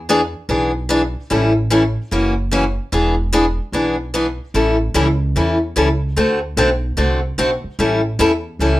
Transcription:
Already playing: upright bass E2
0.09 steel-string acoustic guitar E3 B3 D4 G#4
0.49 upright bass B1, steel-string acoustic guitar E3 B3 D4 G#4
0.89 steel-string acoustic guitar E3 B3 D4 G#4
1.30 upright bass A1, steel-string acoustic guitar E3 G3 C#4 E4 A4
1.70 steel-string acoustic guitar E3 G3 C#4 E4 A4
2.11 upright bass F#1, steel-string acoustic guitar C#3 E3 A#3 C#4 F#4
2.51 steel-string acoustic guitar C#3 E3 A#3 C#4 F#4
2.92 upright bass E1, steel-string acoustic guitar E3 B3 D4 G#4
3.33 steel-string acoustic guitar E3 B3 D4 G#4
3.72 upright bass B1, steel-string acoustic guitar E3 B3 D4 G#4
4.14 steel-string acoustic guitar E3 B3 D4 G#4
4.54 upright bass A1, steel-string acoustic guitar E3 G3 C#4 E4 A4
4.94 upright bass C#2, steel-string acoustic guitar E3 G3 C#4 E4 A4
5.36 upright bass E2, steel-string acoustic guitar E3 G3 C#4 E4 A4
5.76 upright bass C#2, steel-string acoustic guitar E3 G3 C#4 E4 A4
6.16 upright bass D2, steel-string acoustic guitar D3 A3 C4 F#4 A4
6.57 upright bass B1, steel-string acoustic guitar D3 A3 C4 F#4 A4
6.97 upright bass C2, steel-string acoustic guitar D3 A3 C4 F#4 A4
7.38 upright bass B1, steel-string acoustic guitar D3 A3 C4 F#4 A4
7.64 muted upright bass stroke
7.79 upright bass A1, steel-string acoustic guitar E3 G3 C#4 E4 A4
8.19 upright bass E2, steel-string acoustic guitar E3 G3 C#4 E4 A4
8.59 upright bass C#2, steel-string acoustic guitar E3 G3 C#4 E4 A4

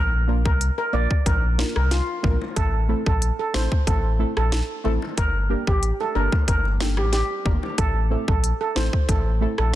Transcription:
Already playing: sub bass A#1, steel pan A#4
0.28 synth stab A#3 D4 F4 A#4
0.45 sub bass C2, steel pan A#4, kick
0.61 closed hi-hat
0.78 steel pan A#4
0.93 sub bass A#1, synth stab A#3 D4 F4 A#4, steel pan D5
1.11 kick
1.26 sub bass A#1, steel pan A#4, kick, closed hi-hat, high bongo
1.58 synth stab A#3 D4 F4 A#4, snare
1.76 sub bass C2, steel pan A#4, cross-stick
1.91 steel pan F4, snare, closed hi-hat
2.23 sub bass A#1, synth stab A#3 D4 F4 A#4, kick, low bongo
2.41 high bongo
2.56 sub bass A1, steel pan A4, kick, closed hi-hat, high bongo
2.88 synth stab A3 C4 E4 A4
3.06 sub bass A#1, steel pan A4, kick
3.22 closed hi-hat
3.39 steel pan A4
3.54 sub bass A1, synth stab A3 C4 E4 A4, steel pan C5, snare
3.72 kick
3.87 sub bass A1, steel pan A4, kick, closed hi-hat, high bongo
4.19 synth stab A3 C4 E4 A4
4.37 sub bass A#1, steel pan A4, cross-stick
4.52 snare, closed hi-hat
4.84 sub bass A1, synth stab A3 C4 E4 A4, low bongo
5.02 high bongo
5.17 sub bass G1, steel pan A#4, kick, closed hi-hat, high bongo
5.49 synth stab A#3 D4 G4 A#4
5.67 sub bass A1, steel pan G4, kick
5.83 closed hi-hat
6.00 steel pan A4, high bongo
6.15 sub bass G1, synth stab A#3 D4 G4 A#4, steel pan A#4
6.32 kick, high bongo
6.48 sub bass G1, steel pan A#4, kick, closed hi-hat, high bongo
6.65 high bongo
6.80 synth stab A#3 D4 G4 A4, snare
6.97 sub bass A1, steel pan G4, cross-stick, high bongo
7.13 steel pan G4, snare, closed hi-hat
7.45 sub bass G1, synth stab A#3 D4 G4 A#4, kick, low bongo
7.63 high bongo
7.78 sub bass A1, steel pan A4, kick, closed hi-hat, high bongo
8.10 synth stab A3 C4 E4 A4
8.28 sub bass A#1, steel pan A4, kick
8.44 closed hi-hat
8.61 steel pan A4
8.75 sub bass A1, synth stab A3 C4 E4 A4, steel pan C5, snare
8.93 kick
9.09 sub bass A1, steel pan A4, kick, closed hi-hat, high bongo
9.41 synth stab A3 C4 E4 A4
9.58 sub bass A#1, steel pan A4, cross-stick

